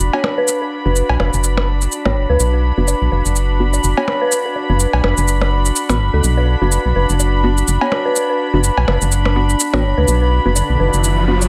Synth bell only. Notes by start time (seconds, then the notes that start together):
0.14 C#5
0.38 B4
0.62 B4
0.85 B4
1.20 B4
2.06 C#5
2.29 B4
2.54 B4
2.78 B4
3.12 B4
3.97 C#5
4.21 B4
4.45 B4
4.69 B4
5.04 B4
5.89 B5
6.13 A4
6.37 B4
6.61 B4
6.96 B4
7.81 C#5
8.05 B4
8.29 B4
8.53 B4
8.88 B4
9.74 C#5
9.98 B4
10.22 B4
10.46 B4
10.80 B4